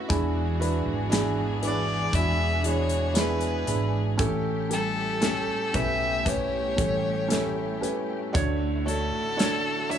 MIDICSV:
0, 0, Header, 1, 7, 480
1, 0, Start_track
1, 0, Tempo, 1020408
1, 46, Time_signature, 4, 2, 24, 8
1, 1485, Tempo, 1038062
1, 4642, End_track
2, 0, Start_track
2, 0, Title_t, "Violin"
2, 0, Program_c, 0, 40
2, 778, Note_on_c, 0, 74, 86
2, 1010, Note_on_c, 0, 76, 94
2, 1018, Note_off_c, 0, 74, 0
2, 1247, Note_off_c, 0, 76, 0
2, 1258, Note_on_c, 0, 73, 90
2, 1501, Note_on_c, 0, 71, 78
2, 1508, Note_off_c, 0, 73, 0
2, 1852, Note_off_c, 0, 71, 0
2, 2211, Note_on_c, 0, 69, 88
2, 2686, Note_on_c, 0, 76, 91
2, 2693, Note_off_c, 0, 69, 0
2, 2931, Note_on_c, 0, 73, 85
2, 2938, Note_off_c, 0, 76, 0
2, 3650, Note_off_c, 0, 73, 0
2, 4129, Note_on_c, 0, 69, 88
2, 4602, Note_on_c, 0, 76, 97
2, 4609, Note_off_c, 0, 69, 0
2, 4642, Note_off_c, 0, 76, 0
2, 4642, End_track
3, 0, Start_track
3, 0, Title_t, "Felt piano"
3, 0, Program_c, 1, 0
3, 0, Control_c, 1, 64, 127
3, 0, Note_on_c, 1, 64, 72
3, 0, Note_on_c, 1, 66, 63
3, 0, Note_on_c, 1, 69, 80
3, 0, Note_on_c, 1, 71, 80
3, 41, Note_on_c, 1, 62, 111
3, 44, Note_on_c, 1, 52, 75
3, 45, Note_off_c, 1, 64, 0
3, 45, Note_on_c, 1, 64, 97
3, 46, Note_on_c, 1, 68, 120
3, 51, Note_off_c, 1, 66, 0
3, 51, Control_c, 1, 64, 0
3, 53, Note_off_c, 1, 69, 0
3, 53, Note_off_c, 1, 71, 0
3, 131, Control_c, 1, 64, 127
3, 272, Note_off_c, 1, 62, 0
3, 274, Note_off_c, 1, 64, 0
3, 275, Note_off_c, 1, 68, 0
3, 280, Note_on_c, 1, 62, 89
3, 285, Note_on_c, 1, 64, 77
3, 287, Note_on_c, 1, 71, 92
3, 510, Note_off_c, 1, 62, 0
3, 513, Note_off_c, 1, 64, 0
3, 514, Note_off_c, 1, 71, 0
3, 517, Note_on_c, 1, 62, 107
3, 522, Note_on_c, 1, 64, 90
3, 526, Note_on_c, 1, 68, 116
3, 745, Note_off_c, 1, 52, 0
3, 748, Note_off_c, 1, 62, 0
3, 750, Note_off_c, 1, 64, 0
3, 752, Note_off_c, 1, 68, 0
3, 759, Note_on_c, 1, 62, 70
3, 762, Note_on_c, 1, 64, 62
3, 765, Note_on_c, 1, 71, 79
3, 988, Note_off_c, 1, 62, 0
3, 990, Note_off_c, 1, 64, 0
3, 992, Note_off_c, 1, 71, 0
3, 1001, Note_on_c, 1, 62, 73
3, 1004, Note_on_c, 1, 64, 66
3, 1008, Note_on_c, 1, 66, 81
3, 1230, Note_off_c, 1, 62, 0
3, 1231, Note_off_c, 1, 64, 0
3, 1233, Note_off_c, 1, 66, 0
3, 1240, Note_on_c, 1, 62, 70
3, 1244, Note_on_c, 1, 64, 61
3, 1249, Note_on_c, 1, 68, 75
3, 1469, Note_off_c, 1, 62, 0
3, 1473, Note_off_c, 1, 64, 0
3, 1476, Note_off_c, 1, 68, 0
3, 1476, Note_on_c, 1, 62, 88
3, 1481, Note_on_c, 1, 64, 83
3, 1486, Note_on_c, 1, 68, 90
3, 1708, Note_off_c, 1, 62, 0
3, 1710, Note_off_c, 1, 64, 0
3, 1712, Note_off_c, 1, 68, 0
3, 1718, Note_on_c, 1, 62, 63
3, 1723, Note_on_c, 1, 64, 64
3, 1726, Note_on_c, 1, 68, 72
3, 1948, Note_off_c, 1, 62, 0
3, 1950, Note_off_c, 1, 64, 0
3, 1952, Note_off_c, 1, 68, 0
3, 1956, Note_on_c, 1, 61, 102
3, 1960, Note_on_c, 1, 45, 70
3, 1961, Note_on_c, 1, 67, 95
3, 1963, Note_on_c, 1, 69, 121
3, 1969, Control_c, 1, 64, 0
3, 2046, Control_c, 1, 64, 127
3, 2187, Note_off_c, 1, 61, 0
3, 2190, Note_off_c, 1, 67, 0
3, 2190, Note_off_c, 1, 69, 0
3, 2195, Note_on_c, 1, 61, 64
3, 2199, Note_on_c, 1, 67, 61
3, 2203, Note_on_c, 1, 69, 73
3, 2427, Note_off_c, 1, 61, 0
3, 2429, Note_off_c, 1, 67, 0
3, 2431, Note_off_c, 1, 69, 0
3, 2435, Note_on_c, 1, 61, 82
3, 2438, Note_on_c, 1, 67, 74
3, 2442, Note_on_c, 1, 69, 93
3, 2662, Note_off_c, 1, 45, 0
3, 2667, Note_off_c, 1, 61, 0
3, 2668, Note_off_c, 1, 67, 0
3, 2670, Note_off_c, 1, 69, 0
3, 2676, Note_on_c, 1, 61, 65
3, 2681, Note_on_c, 1, 67, 62
3, 2683, Note_on_c, 1, 71, 70
3, 2907, Note_off_c, 1, 61, 0
3, 2909, Note_off_c, 1, 67, 0
3, 2910, Note_off_c, 1, 71, 0
3, 2917, Note_on_c, 1, 61, 69
3, 2920, Note_on_c, 1, 67, 64
3, 2923, Note_on_c, 1, 71, 74
3, 3146, Note_off_c, 1, 61, 0
3, 3148, Note_off_c, 1, 67, 0
3, 3150, Note_off_c, 1, 71, 0
3, 3153, Note_on_c, 1, 61, 62
3, 3155, Note_on_c, 1, 67, 59
3, 3160, Note_on_c, 1, 69, 69
3, 3386, Note_off_c, 1, 61, 0
3, 3388, Note_off_c, 1, 67, 0
3, 3391, Note_off_c, 1, 69, 0
3, 3393, Note_on_c, 1, 61, 77
3, 3396, Note_on_c, 1, 67, 74
3, 3401, Note_on_c, 1, 69, 85
3, 3628, Note_off_c, 1, 61, 0
3, 3630, Note_off_c, 1, 67, 0
3, 3632, Note_off_c, 1, 69, 0
3, 3637, Note_on_c, 1, 61, 70
3, 3639, Note_on_c, 1, 67, 68
3, 3643, Note_on_c, 1, 71, 86
3, 3870, Note_off_c, 1, 61, 0
3, 3871, Note_off_c, 1, 67, 0
3, 3873, Note_off_c, 1, 71, 0
3, 3876, Note_on_c, 1, 62, 101
3, 3879, Note_on_c, 1, 66, 94
3, 3880, Note_on_c, 1, 50, 72
3, 3882, Note_on_c, 1, 73, 112
3, 3893, Control_c, 1, 64, 0
3, 3972, Control_c, 1, 64, 127
3, 4108, Note_off_c, 1, 62, 0
3, 4111, Note_off_c, 1, 66, 0
3, 4112, Note_off_c, 1, 73, 0
3, 4115, Note_on_c, 1, 62, 64
3, 4118, Note_on_c, 1, 66, 64
3, 4121, Note_on_c, 1, 73, 78
3, 4349, Note_off_c, 1, 62, 0
3, 4350, Note_off_c, 1, 66, 0
3, 4352, Note_off_c, 1, 73, 0
3, 4357, Note_on_c, 1, 62, 85
3, 4359, Note_on_c, 1, 66, 77
3, 4362, Note_on_c, 1, 73, 97
3, 4584, Note_off_c, 1, 50, 0
3, 4589, Note_off_c, 1, 62, 0
3, 4590, Note_off_c, 1, 66, 0
3, 4592, Note_off_c, 1, 73, 0
3, 4598, Note_on_c, 1, 62, 69
3, 4603, Note_on_c, 1, 66, 60
3, 4604, Note_on_c, 1, 73, 74
3, 4642, Note_off_c, 1, 62, 0
3, 4642, Note_off_c, 1, 66, 0
3, 4642, Note_off_c, 1, 73, 0
3, 4642, End_track
4, 0, Start_track
4, 0, Title_t, "String section"
4, 0, Program_c, 2, 48
4, 0, Note_on_c, 2, 66, 76
4, 48, Note_on_c, 2, 52, 78
4, 48, Note_on_c, 2, 62, 70
4, 49, Note_on_c, 2, 59, 70
4, 52, Note_on_c, 2, 68, 87
4, 1941, Note_off_c, 2, 66, 0
4, 1945, Note_off_c, 2, 52, 0
4, 1946, Note_off_c, 2, 59, 0
4, 1946, Note_off_c, 2, 62, 0
4, 1947, Note_off_c, 2, 68, 0
4, 1967, Note_on_c, 2, 57, 76
4, 1968, Note_on_c, 2, 67, 82
4, 3870, Note_off_c, 2, 67, 0
4, 3882, Note_on_c, 2, 50, 69
4, 3882, Note_on_c, 2, 66, 79
4, 3884, Note_on_c, 2, 64, 64
4, 4642, Note_off_c, 2, 50, 0
4, 4642, Note_off_c, 2, 57, 0
4, 4642, Note_off_c, 2, 64, 0
4, 4642, Note_off_c, 2, 66, 0
4, 4642, End_track
5, 0, Start_track
5, 0, Title_t, "Steel-string acoustic guitar"
5, 0, Program_c, 3, 25
5, 0, Note_on_c, 3, 57, 61
5, 0, Note_on_c, 3, 61, 61
5, 0, Note_on_c, 3, 66, 67
5, 45, Note_on_c, 3, 40, 80
5, 93, Note_off_c, 3, 66, 0
5, 94, Note_off_c, 3, 61, 0
5, 95, Note_off_c, 3, 57, 0
5, 284, Note_on_c, 3, 56, 56
5, 763, Note_on_c, 3, 64, 64
5, 1001, Note_on_c, 3, 62, 59
5, 1238, Note_off_c, 3, 56, 0
5, 1244, Note_on_c, 3, 56, 57
5, 1483, Note_off_c, 3, 64, 0
5, 1485, Note_on_c, 3, 64, 63
5, 1718, Note_off_c, 3, 62, 0
5, 1724, Note_on_c, 3, 62, 57
5, 1960, Note_on_c, 3, 45, 81
5, 1963, Note_off_c, 3, 40, 0
5, 2011, Note_off_c, 3, 56, 0
5, 2011, Note_off_c, 3, 62, 0
5, 2202, Note_on_c, 3, 55, 55
5, 2443, Note_on_c, 3, 61, 56
5, 2681, Note_off_c, 3, 64, 0
5, 2683, Note_on_c, 3, 64, 60
5, 2921, Note_off_c, 3, 61, 0
5, 2923, Note_on_c, 3, 61, 54
5, 3156, Note_off_c, 3, 55, 0
5, 3162, Note_on_c, 3, 55, 55
5, 3401, Note_off_c, 3, 64, 0
5, 3406, Note_on_c, 3, 64, 58
5, 3645, Note_off_c, 3, 61, 0
5, 3646, Note_on_c, 3, 61, 55
5, 3885, Note_off_c, 3, 45, 0
5, 3885, Note_on_c, 3, 50, 73
5, 3934, Note_off_c, 3, 55, 0
5, 3935, Note_off_c, 3, 64, 0
5, 4124, Note_on_c, 3, 57, 56
5, 4363, Note_off_c, 3, 61, 0
5, 4365, Note_on_c, 3, 61, 55
5, 4602, Note_on_c, 3, 66, 60
5, 4642, Note_off_c, 3, 50, 0
5, 4642, Note_off_c, 3, 57, 0
5, 4642, Note_off_c, 3, 61, 0
5, 4642, Note_off_c, 3, 66, 0
5, 4642, End_track
6, 0, Start_track
6, 0, Title_t, "Fingered electric bass"
6, 0, Program_c, 4, 33
6, 49, Note_on_c, 4, 28, 109
6, 390, Note_off_c, 4, 28, 0
6, 403, Note_on_c, 4, 32, 84
6, 982, Note_off_c, 4, 32, 0
6, 1004, Note_on_c, 4, 28, 96
6, 1706, Note_off_c, 4, 28, 0
6, 1725, Note_on_c, 4, 32, 79
6, 1947, Note_off_c, 4, 32, 0
6, 1962, Note_on_c, 4, 33, 100
6, 2543, Note_off_c, 4, 33, 0
6, 2679, Note_on_c, 4, 35, 86
6, 3142, Note_off_c, 4, 35, 0
6, 3162, Note_on_c, 4, 33, 80
6, 3627, Note_off_c, 4, 33, 0
6, 3887, Note_on_c, 4, 38, 94
6, 4241, Note_off_c, 4, 38, 0
6, 4241, Note_on_c, 4, 33, 72
6, 4642, Note_off_c, 4, 33, 0
6, 4642, End_track
7, 0, Start_track
7, 0, Title_t, "Drums"
7, 47, Note_on_c, 9, 36, 109
7, 47, Note_on_c, 9, 42, 88
7, 94, Note_off_c, 9, 36, 0
7, 94, Note_off_c, 9, 42, 0
7, 291, Note_on_c, 9, 42, 61
7, 338, Note_off_c, 9, 42, 0
7, 527, Note_on_c, 9, 42, 91
7, 531, Note_on_c, 9, 38, 106
7, 574, Note_off_c, 9, 42, 0
7, 578, Note_off_c, 9, 38, 0
7, 765, Note_on_c, 9, 42, 72
7, 812, Note_off_c, 9, 42, 0
7, 1003, Note_on_c, 9, 36, 85
7, 1004, Note_on_c, 9, 42, 86
7, 1050, Note_off_c, 9, 36, 0
7, 1051, Note_off_c, 9, 42, 0
7, 1243, Note_on_c, 9, 42, 65
7, 1290, Note_off_c, 9, 42, 0
7, 1361, Note_on_c, 9, 42, 50
7, 1408, Note_off_c, 9, 42, 0
7, 1482, Note_on_c, 9, 42, 92
7, 1489, Note_on_c, 9, 38, 94
7, 1529, Note_off_c, 9, 42, 0
7, 1535, Note_off_c, 9, 38, 0
7, 1600, Note_on_c, 9, 42, 45
7, 1647, Note_off_c, 9, 42, 0
7, 1724, Note_on_c, 9, 42, 69
7, 1770, Note_off_c, 9, 42, 0
7, 1962, Note_on_c, 9, 42, 89
7, 1963, Note_on_c, 9, 36, 107
7, 2009, Note_off_c, 9, 42, 0
7, 2010, Note_off_c, 9, 36, 0
7, 2202, Note_on_c, 9, 42, 64
7, 2249, Note_off_c, 9, 42, 0
7, 2438, Note_on_c, 9, 42, 81
7, 2442, Note_on_c, 9, 38, 103
7, 2484, Note_off_c, 9, 42, 0
7, 2488, Note_off_c, 9, 38, 0
7, 2680, Note_on_c, 9, 36, 77
7, 2680, Note_on_c, 9, 42, 66
7, 2727, Note_off_c, 9, 36, 0
7, 2727, Note_off_c, 9, 42, 0
7, 2920, Note_on_c, 9, 36, 83
7, 2923, Note_on_c, 9, 42, 84
7, 2966, Note_off_c, 9, 36, 0
7, 2969, Note_off_c, 9, 42, 0
7, 3161, Note_on_c, 9, 36, 85
7, 3162, Note_on_c, 9, 42, 63
7, 3207, Note_off_c, 9, 36, 0
7, 3208, Note_off_c, 9, 42, 0
7, 3403, Note_on_c, 9, 42, 95
7, 3409, Note_on_c, 9, 38, 90
7, 3449, Note_off_c, 9, 42, 0
7, 3455, Note_off_c, 9, 38, 0
7, 3647, Note_on_c, 9, 42, 72
7, 3694, Note_off_c, 9, 42, 0
7, 3886, Note_on_c, 9, 36, 102
7, 3888, Note_on_c, 9, 42, 87
7, 3932, Note_off_c, 9, 36, 0
7, 3934, Note_off_c, 9, 42, 0
7, 4132, Note_on_c, 9, 42, 58
7, 4178, Note_off_c, 9, 42, 0
7, 4369, Note_on_c, 9, 42, 89
7, 4373, Note_on_c, 9, 38, 101
7, 4415, Note_off_c, 9, 42, 0
7, 4419, Note_off_c, 9, 38, 0
7, 4609, Note_on_c, 9, 42, 71
7, 4642, Note_off_c, 9, 42, 0
7, 4642, End_track
0, 0, End_of_file